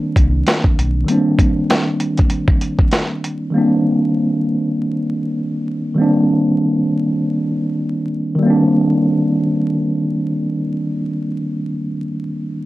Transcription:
Already playing: tine electric piano D#3 G3 A#3 C4 D4
0.16 sub bass C2, kick, closed hi-hat
0.46 snare, closed hi-hat
0.64 kick
0.78 sub bass B1, closed hi-hat
1.04 tine electric piano D#3 G3 A#3, closed hi-hat
1.10 tine electric piano C4 D4
1.38 kick, closed hi-hat
1.70 snare, closed hi-hat
2.00 closed hi-hat
2.18 kick, closed hi-hat
2.30 closed hi-hat
2.48 kick
2.61 closed hi-hat
2.79 kick
2.91 snare, closed hi-hat
3.24 closed hi-hat
3.50 tine electric piano D#3 G3 A#3
3.56 tine electric piano C4 D4
5.94 tine electric piano D#3 G3 A#3
6.00 tine electric piano C4 D4
8.35 tine electric piano D#3 G3
8.43 tine electric piano A#3 C4
8.50 tine electric piano D4

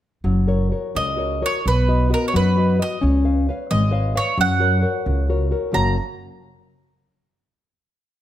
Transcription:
0.24 upright bass F#1, nylon-string guitar F#3
0.47 nylon-string guitar F#4 A#4 C#5
0.72 nylon-string guitar F#4 A#4 C#5
0.95 upright bass C#2, nylon-string guitar C#3, mandolin D#5
1.17 nylon-string guitar F#4 A#4 C#5
1.42 nylon-string guitar F#4 A#4 C#5, mandolin C#5
1.66 upright bass B1, nylon-string guitar B3, mandolin B4
1.88 nylon-string guitar F#4 B4 D#5
2.10 nylon-string guitar F#4 B4 D#5
2.14 mandolin A#4
2.28 mandolin C#5
2.34 upright bass F#2, nylon-string guitar F#3, mandolin B4
2.57 nylon-string guitar F#4 B4 D#5
2.79 nylon-string guitar F#4 B4 D#5, mandolin D#5
3.01 upright bass C#2, nylon-string guitar C#4
3.25 nylon-string guitar B4 C#5 F5
3.49 nylon-string guitar B4 C#5 F5
3.71 upright bass G#1, nylon-string guitar G#3, mandolin D#5
3.91 nylon-string guitar B4 C#5 F5
4.15 nylon-string guitar B4 C#5 F5, mandolin C#5
4.38 upright bass F#2, nylon-string guitar F#3, mandolin F#5
4.60 nylon-string guitar F#4 A#4 C#5
4.81 nylon-string guitar F#4 A#4 C#5
5.06 upright bass C#2, nylon-string guitar C#3
5.29 nylon-string guitar F#4 A#4 C#5
5.51 nylon-string guitar F#4 A#4 C#5
5.72 upright bass F#1, nylon-string guitar F#2 C#3 A#3 F#4 C#5 F#5, mandolin A#5

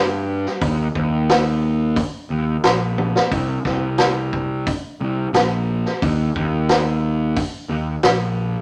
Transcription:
Already playing: picked electric bass G2
0.46 snare
0.61 picked electric bass D#2, kick, open hi-hat
0.95 picked electric bass D#2, kick
1.29 snare, open hi-hat
1.96 kick, open hi-hat
2.30 picked electric bass D#2
2.64 picked electric bass A#1, snare, open hi-hat
2.98 high tom
3.16 snare
3.31 picked electric bass C2, kick, open hi-hat
3.65 picked electric bass C2, kick, snare
3.98 snare, open hi-hat
4.33 kick
4.67 kick, open hi-hat
5.01 picked electric bass C2
5.33 picked electric bass A#1, snare, open hi-hat
5.86 snare
6.02 picked electric bass D#2, kick, open hi-hat
6.35 picked electric bass D#2, kick
6.69 snare, open hi-hat
7.36 kick, open hi-hat
7.69 picked electric bass D#2
8.03 picked electric bass A#1, snare, open hi-hat

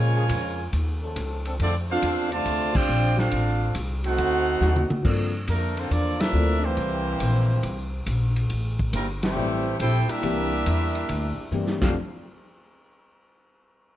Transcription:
Already playing: upright bass A#2, trombone section C#3 F3 G#3, trumpet section F4 A#4 C#5 G#5
0.15 trombone section F3 A#3 C#4 G#4
0.29 upright bass F2, kick, hi-hat pedal, ride
0.72 upright bass D#2, kick, ride
1.02 trombone section F3 C#4 D#4 A4
1.16 upright bass C#2, kick, hi-hat pedal, ride
1.45 trombone section F3 C4 D4 A4, ride
1.59 upright bass F2, trombone section D3 A3 D4, trumpet section C4 F4 A4 D5, kick, ride
1.90 trombone section C4 D4 F4, trumpet section D4 A4 C5 F5
2.02 upright bass E2, trombone section F3 C4 D4 A4, kick, hi-hat pedal, ride
2.31 trombone section C3 D3 A3, trumpet section F4 C5 D5 A5, ride
2.45 upright bass D2, kick, ride
2.74 trombone section C4 D4 G4, trumpet section F4 C5 D5 G5, kick, crash
2.88 upright bass A#1, hi-hat pedal
3.17 trombone section F3 C4 D4 F4 G4, trumpet section D4 A4 C5 F5, snare
3.31 upright bass A1, kick, ride
3.75 upright bass C2, kick, hi-hat pedal, ride
4.04 trombone section A3 C4 F#4, trumpet section D#4 A4 C5 F#5, ride
4.18 upright bass D2, kick, ride
4.61 upright bass D#2, trombone section D#3 C4 D4 F#4, snare, hi-hat pedal
4.76 high tom
4.90 muted upright bass stroke, high tom
5.03 upright bass G2, upright piano F3 A#3 C4 D4 A4, kick, crash
5.48 upright bass F2, trombone section D3 F3 A#3, trumpet section A3 D4 A#4, kick, hi-hat pedal, ride
5.77 trombone section D3 F3 C4, trumpet section A#3 F4 A4 C5, ride
5.89 upright bass E2, trombone section F3 A#3 D4, trumpet section A#3 F4 A4 D5, kick, ride
6.19 trombone section F3 A#3 E4, trumpet section D4 A4 A#4 E5, snare, ride
6.33 upright bass D2, upright piano F3 A#3 C4 D4 A4, hi-hat pedal
6.63 trombone section E3 G3 C4, trumpet section A#3 E4 G4 C5
6.77 upright bass C2, kick, ride
7.20 upright bass A#1, kick, hi-hat pedal, ride
7.63 upright bass C2, kick, ride
8.06 upright bass A#1, kick, hi-hat pedal, ride
8.36 ride
8.50 upright bass A1, kick, ride
8.79 kick
8.93 upright bass G1, trumpet section G3 C4 E4 A#4, trombone section A#3, kick, hi-hat pedal, ride
9.23 trombone section E3 G3 C4, trumpet section A3 E4 G4 C5, snare, ride
9.35 upright bass A1, upright piano G3 A3 C4 E4 G4
9.80 upright bass A#1, trombone section C4 E4 G4, trumpet section E4 A4 C5 G5, kick, hi-hat pedal, ride
10.08 trombone section G3 A#3 E4, trumpet section D4 G4 A#4 E5, muted upright bass stroke, ride
10.22 upright bass C2, upright piano E3 A#3 C4 D4 G4, kick, ride
10.66 upright bass E2, kick, hi-hat pedal, ride
10.95 ride
11.09 upright bass D2, kick, ride
11.38 muted upright bass stroke
11.51 upright bass G2, upright piano E3 A#3 C4 D4 G4, hi-hat pedal
11.67 snare
11.81 upright bass F1, trombone section F2 C3 D3 A3, upright piano F3 A3 C4 D4 G4, trumpet section D4 A4 C5 F5, kick, snare, crash

